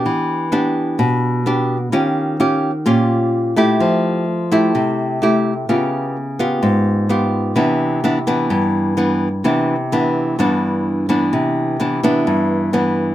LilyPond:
\new Staff \with { instrumentName = "Nylon-string guitar" } { \time 4/4 \key c \major \tempo 4 = 128 << { <b d' g'>4 <b d' g'>2 <b d' g'>8 r8 | <des' f' g'>4 <des' f' g'>8 r8 <des' f' g'>4. <a e' g'>8~ | <a e' g'>4 r8 <a e' g'>4. <a e' g'>8 r8 | <ces' f' g'>4 r8 <ces' f' g'>4. <ces' f' g'>4 |
<e b d'>4 <e b d'>8 <e b d'>4. <e b d'>8 r8 | <e b d'>8 r8 <e b d'>4 <e b d'>4. <e b d'>8~ | <e b d'>4 <e b d'>8 <e b d'>4. <e b d'>4 | } \\ { e2 b,2 | ees2 bes,2 | f2 c2 | des2 aes,2 |
c2 g,2 | c2 g,2 | c2 g,2 | } >> }